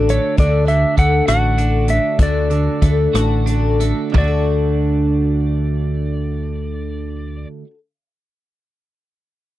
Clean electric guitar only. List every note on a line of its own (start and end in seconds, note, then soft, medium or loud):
0.00 0.39 D3 medium
0.00 1.58 D4 medium
0.00 1.27 F#4 medium
0.10 0.97 A3 medium
0.39 0.67 D3 medium
0.67 2.20 D3 medium
0.97 1.88 A3 medium
1.27 2.82 F#4 medium
1.58 3.14 D4 medium
1.89 2.81 A3 soft
2.20 2.49 D3 medium
2.50 4.11 D3 medium
2.82 3.79 A3 medium
3.13 4.15 F#4 medium
3.46 4.15 D4 medium
3.80 4.13 A3 soft
4.12 7.62 D3 medium
4.12 7.64 A3 medium
4.12 7.66 D4 medium
4.17 7.67 F#4 medium